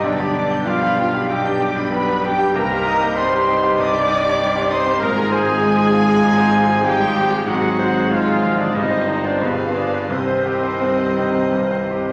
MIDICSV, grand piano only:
0, 0, Header, 1, 2, 480
1, 0, Start_track
1, 0, Key_signature, -3, "minor"
1, 0, Tempo, 628931
1, 33, Time_signature, 4, 2, 24, 8
1, 1953, Tempo, 613497
1, 5313, Tempo, 633580
1, 6753, Tempo, 674916
1, 7713, Tempo, 709220
1, 8673, Tempo, 770218
1, 9048, End_track
2, 0, Start_track
2, 0, Title_t, "Grand piano"
2, 0, Program_c, 0, 0
2, 0, Control_c, 0, 64, 127
2, 29, Note_on_c, 0, 35, 78
2, 46, Control_c, 0, 64, 0
2, 153, Note_on_c, 0, 67, 70
2, 155, Control_c, 0, 64, 127
2, 268, Note_on_c, 0, 62, 68
2, 342, Note_off_c, 0, 67, 0
2, 389, Note_on_c, 0, 67, 59
2, 460, Note_off_c, 0, 62, 0
2, 511, Note_on_c, 0, 55, 68
2, 580, Note_off_c, 0, 67, 0
2, 631, Note_on_c, 0, 67, 63
2, 700, Note_off_c, 0, 55, 0
2, 751, Note_on_c, 0, 62, 67
2, 820, Note_off_c, 0, 67, 0
2, 875, Note_on_c, 0, 67, 71
2, 939, Note_off_c, 0, 62, 0
2, 954, Note_off_c, 0, 35, 0
2, 992, Note_on_c, 0, 35, 69
2, 1061, Note_off_c, 0, 67, 0
2, 1110, Note_on_c, 0, 62, 73
2, 1224, Note_on_c, 0, 67, 68
2, 1301, Note_off_c, 0, 62, 0
2, 1343, Note_on_c, 0, 62, 69
2, 1421, Note_off_c, 0, 67, 0
2, 1468, Note_on_c, 0, 55, 60
2, 1543, Note_off_c, 0, 62, 0
2, 1592, Note_on_c, 0, 67, 68
2, 1666, Note_off_c, 0, 55, 0
2, 1717, Note_on_c, 0, 62, 62
2, 1787, Note_off_c, 0, 67, 0
2, 1825, Note_on_c, 0, 67, 71
2, 1908, Note_off_c, 0, 62, 0
2, 1929, Note_off_c, 0, 35, 0
2, 1948, Note_off_c, 0, 67, 0
2, 1951, Note_on_c, 0, 36, 83
2, 1968, Control_c, 0, 64, 0
2, 2073, Note_on_c, 0, 67, 79
2, 2089, Control_c, 0, 64, 127
2, 2194, Note_on_c, 0, 63, 75
2, 2266, Note_off_c, 0, 67, 0
2, 2306, Note_on_c, 0, 67, 72
2, 2387, Note_off_c, 0, 63, 0
2, 2433, Note_on_c, 0, 55, 77
2, 2504, Note_off_c, 0, 67, 0
2, 2555, Note_on_c, 0, 67, 78
2, 2627, Note_off_c, 0, 55, 0
2, 2670, Note_on_c, 0, 63, 80
2, 2749, Note_off_c, 0, 67, 0
2, 2794, Note_on_c, 0, 67, 82
2, 2867, Note_off_c, 0, 63, 0
2, 2888, Note_off_c, 0, 36, 0
2, 2912, Note_on_c, 0, 43, 70
2, 2990, Note_off_c, 0, 67, 0
2, 3035, Note_on_c, 0, 67, 75
2, 3108, Note_off_c, 0, 43, 0
2, 3150, Note_on_c, 0, 63, 76
2, 3230, Note_off_c, 0, 67, 0
2, 3280, Note_on_c, 0, 67, 73
2, 3347, Note_off_c, 0, 63, 0
2, 3401, Note_on_c, 0, 55, 69
2, 3472, Note_off_c, 0, 67, 0
2, 3517, Note_on_c, 0, 67, 75
2, 3593, Note_off_c, 0, 55, 0
2, 3633, Note_on_c, 0, 63, 71
2, 3711, Note_off_c, 0, 67, 0
2, 3753, Note_on_c, 0, 67, 76
2, 3828, Note_off_c, 0, 63, 0
2, 3876, Note_off_c, 0, 67, 0
2, 3879, Note_on_c, 0, 44, 85
2, 3893, Control_c, 0, 64, 0
2, 3997, Control_c, 0, 64, 127
2, 4001, Note_on_c, 0, 68, 80
2, 4115, Note_on_c, 0, 72, 82
2, 4194, Note_off_c, 0, 68, 0
2, 4227, Note_on_c, 0, 68, 75
2, 4312, Note_off_c, 0, 72, 0
2, 4352, Note_on_c, 0, 56, 77
2, 4428, Note_off_c, 0, 68, 0
2, 4469, Note_on_c, 0, 68, 79
2, 4549, Note_off_c, 0, 56, 0
2, 4588, Note_on_c, 0, 65, 76
2, 4666, Note_off_c, 0, 68, 0
2, 4712, Note_on_c, 0, 68, 81
2, 4784, Note_off_c, 0, 65, 0
2, 4809, Note_off_c, 0, 44, 0
2, 4831, Note_on_c, 0, 44, 82
2, 4905, Note_off_c, 0, 68, 0
2, 4942, Note_on_c, 0, 72, 78
2, 5068, Note_on_c, 0, 65, 81
2, 5139, Note_off_c, 0, 72, 0
2, 5189, Note_on_c, 0, 68, 81
2, 5263, Note_off_c, 0, 65, 0
2, 5299, Note_on_c, 0, 56, 70
2, 5382, Note_off_c, 0, 68, 0
2, 5415, Note_on_c, 0, 68, 75
2, 5496, Note_off_c, 0, 56, 0
2, 5534, Note_on_c, 0, 65, 72
2, 5615, Note_off_c, 0, 68, 0
2, 5657, Note_on_c, 0, 68, 76
2, 5735, Note_off_c, 0, 65, 0
2, 5761, Note_off_c, 0, 44, 0
2, 5779, Note_on_c, 0, 44, 84
2, 5786, Note_off_c, 0, 68, 0
2, 5805, Control_c, 0, 64, 0
2, 5894, Note_on_c, 0, 68, 82
2, 5945, Control_c, 0, 64, 127
2, 6025, Note_on_c, 0, 72, 82
2, 6096, Note_off_c, 0, 68, 0
2, 6137, Note_on_c, 0, 68, 70
2, 6221, Note_off_c, 0, 72, 0
2, 6263, Note_on_c, 0, 56, 73
2, 6336, Note_off_c, 0, 68, 0
2, 6384, Note_on_c, 0, 68, 71
2, 6458, Note_off_c, 0, 56, 0
2, 6504, Note_on_c, 0, 56, 76
2, 6579, Note_off_c, 0, 68, 0
2, 6627, Note_on_c, 0, 68, 71
2, 6701, Note_off_c, 0, 56, 0
2, 6717, Note_off_c, 0, 44, 0
2, 6749, Note_on_c, 0, 43, 87
2, 6751, Note_off_c, 0, 68, 0
2, 6768, Control_c, 0, 64, 0
2, 6863, Note_on_c, 0, 72, 69
2, 6877, Control_c, 0, 64, 127
2, 6981, Note_on_c, 0, 63, 69
2, 7054, Note_off_c, 0, 72, 0
2, 7102, Note_on_c, 0, 72, 72
2, 7174, Note_off_c, 0, 63, 0
2, 7209, Note_off_c, 0, 43, 0
2, 7220, Note_on_c, 0, 43, 80
2, 7223, Note_off_c, 0, 72, 0
2, 7240, Control_c, 0, 64, 0
2, 7348, Note_on_c, 0, 71, 69
2, 7355, Control_c, 0, 64, 127
2, 7466, Note_on_c, 0, 68, 63
2, 7542, Note_off_c, 0, 71, 0
2, 7594, Note_on_c, 0, 71, 62
2, 7663, Note_off_c, 0, 68, 0
2, 7696, Note_off_c, 0, 43, 0
2, 7711, Note_on_c, 0, 36, 73
2, 7715, Note_off_c, 0, 71, 0
2, 7726, Control_c, 0, 64, 0
2, 7828, Note_on_c, 0, 72, 66
2, 7865, Control_c, 0, 64, 127
2, 7952, Note_on_c, 0, 67, 66
2, 8021, Note_off_c, 0, 72, 0
2, 8069, Note_on_c, 0, 72, 64
2, 8143, Note_off_c, 0, 67, 0
2, 8192, Note_on_c, 0, 60, 65
2, 8263, Note_off_c, 0, 72, 0
2, 8312, Note_on_c, 0, 72, 58
2, 8384, Note_off_c, 0, 60, 0
2, 8434, Note_on_c, 0, 63, 63
2, 8504, Note_off_c, 0, 72, 0
2, 8554, Note_on_c, 0, 72, 63
2, 8626, Note_off_c, 0, 63, 0
2, 8646, Note_off_c, 0, 36, 0
2, 8674, Note_on_c, 0, 43, 57
2, 8744, Note_off_c, 0, 72, 0
2, 8790, Note_on_c, 0, 72, 58
2, 8862, Note_off_c, 0, 43, 0
2, 8913, Note_on_c, 0, 67, 60
2, 8986, Note_off_c, 0, 72, 0
2, 9048, Note_off_c, 0, 67, 0
2, 9048, End_track
0, 0, End_of_file